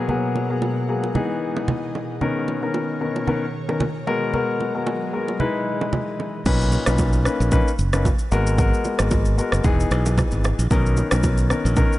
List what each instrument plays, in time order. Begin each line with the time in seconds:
Already playing: ambient pad B2 G#3 A#4 F#5
0.09 grand piano F#3 A#3 B3 G#4, low conga
0.36 high bongo, low bongo
0.50 grand piano F#3 A#3 B3 G#4
0.62 high bongo
0.88 grand piano F#3 A#3 B3 G#4
1.03 high bongo
1.15 grand piano E3 B3 D#4 G#4, ambient pad E3 G#4 D#5, low conga
1.57 low bongo
1.68 high bongo, low conga
1.95 low bongo
2.21 grand piano D#3 B3 C#4 A#4, ambient pad D#3 A#4 C#5, low conga
2.48 high bongo, low bongo
2.62 grand piano D#3 B3 C#4 A#4
2.74 high bongo
3.01 grand piano D#3 B3 C#4 A#4
3.16 high bongo
3.27 grand piano D#3 B3 C#4 A#4, low conga
3.68 grand piano D#3 B3 C#4 A#4, low bongo
3.80 high bongo, low conga
4.07 ambient pad F#3 G#4, grand piano G#3 B3 F#4 A#4, low bongo
4.33 grand piano G#3 B3 F#4 A#4, low conga
4.60 high bongo, low bongo
4.75 grand piano G#3 B3 F#4 A#4
4.87 high bongo
5.13 grand piano G#3 B3 F#4 A#4
5.28 high bongo
5.40 ambient pad E3 D#5, grand piano G#3 D#4 E4 B4, low conga
5.81 low bongo
5.93 high bongo, low conga
6.20 low bongo
6.46 fingered electric bass B1, grand piano A#2 C#4 D#4 B4, kick, crash, low conga, shaker
6.61 shaker
6.72 high bongo, low bongo, shaker
6.86 fingered electric bass B1, grand piano A#2 C#4 D#4 B4, cross-stick, low bongo, shaker
6.98 kick, high bongo, shaker
7.13 shaker
7.25 grand piano A#3 C#4 D#4 B4, cross-stick, shaker
7.40 fingered electric bass A#1, shaker
7.51 grand piano A#3 C#4 D#4 B4, kick, low conga, shaker
7.68 shaker
7.79 fingered electric bass F#1, shaker
7.93 grand piano A#3 C#4 D#4 B4, cross-stick, low bongo, shaker
8.05 kick, high bongo, low conga, shaker
8.19 shaker
8.31 fingered electric bass G#1, grand piano G#3 B3 F#4 A#4, low bongo, shaker
8.47 shaker
8.58 grand piano G#3 B3 F#4 A#4, kick, low conga, shaker
8.74 shaker
8.84 high bongo, low bongo, shaker
8.99 fingered electric bass G#1, grand piano G#3 B3 F#4 A#4, cross-stick, low bongo, shaker
9.11 kick, high bongo, shaker
9.25 shaker
9.38 grand piano G#3 B3 F#4 A#4, shaker
9.52 fingered electric bass F#1, cross-stick, shaker
9.64 fingered electric bass E1, grand piano E3 B3 D#4 G#4, kick, low conga, shaker
9.80 shaker
9.91 fingered electric bass B1, cross-stick, shaker
10.06 low bongo, shaker
10.18 kick, cross-stick, high bongo, low conga, shaker
10.31 fingered electric bass G#1, shaker
10.44 cross-stick, low bongo, shaker
10.59 fingered electric bass A#1, shaker
10.71 fingered electric bass B1, grand piano D#3 B3 C#4 A#4, kick, low conga, shaker
10.86 shaker
10.97 high bongo, low bongo, shaker
11.11 fingered electric bass B1, grand piano D#3 B3 C#4 A#4, cross-stick, low bongo, shaker
11.23 kick, high bongo, shaker
11.38 shaker
11.50 grand piano D#3 B3 C#4 A#4, cross-stick, shaker
11.65 fingered electric bass A#1, shaker
11.76 grand piano D#3 B3 C#4 A#4, kick, low conga, shaker
11.93 shaker